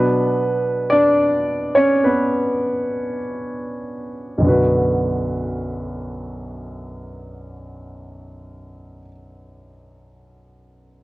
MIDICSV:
0, 0, Header, 1, 2, 480
1, 0, Start_track
1, 0, Key_signature, 2, "minor"
1, 0, Tempo, 1123596
1, 877, Tempo, 1171875
1, 1357, Tempo, 1229508
1, 1829, Time_signature, 4, 2, 24, 8
1, 4405, End_track
2, 0, Start_track
2, 0, Title_t, "Grand piano"
2, 0, Program_c, 0, 0
2, 0, Note_on_c, 0, 47, 46
2, 0, Note_on_c, 0, 54, 39
2, 0, Note_on_c, 0, 59, 57
2, 0, Note_on_c, 0, 62, 50
2, 0, Note_on_c, 0, 71, 71
2, 8, Control_c, 0, 64, 127
2, 376, Note_off_c, 0, 59, 0
2, 385, Note_on_c, 0, 74, 81
2, 389, Note_off_c, 0, 62, 0
2, 395, Note_on_c, 0, 62, 59
2, 402, Note_off_c, 0, 71, 0
2, 734, Note_off_c, 0, 74, 0
2, 739, Note_off_c, 0, 62, 0
2, 747, Note_on_c, 0, 73, 68
2, 755, Note_on_c, 0, 61, 49
2, 869, Note_off_c, 0, 61, 0
2, 871, Note_on_c, 0, 71, 62
2, 877, Note_off_c, 0, 73, 0
2, 880, Note_on_c, 0, 59, 43
2, 1337, Note_off_c, 0, 71, 0
2, 1341, Note_off_c, 0, 59, 0
2, 1807, Note_on_c, 0, 35, 40
2, 1811, Note_off_c, 0, 47, 0
2, 1813, Note_off_c, 0, 54, 0
2, 1815, Note_on_c, 0, 42, 34
2, 1822, Note_on_c, 0, 50, 36
2, 1832, Note_on_c, 0, 59, 32
2, 1834, Control_c, 0, 64, 0
2, 1840, Note_on_c, 0, 66, 33
2, 1848, Note_on_c, 0, 71, 42
2, 1894, Control_c, 0, 64, 127
2, 3610, Note_off_c, 0, 35, 0
2, 3618, Note_off_c, 0, 42, 0
2, 3625, Note_off_c, 0, 50, 0
2, 3635, Note_off_c, 0, 59, 0
2, 3643, Note_off_c, 0, 66, 0
2, 3651, Note_off_c, 0, 71, 0
2, 4405, End_track
0, 0, End_of_file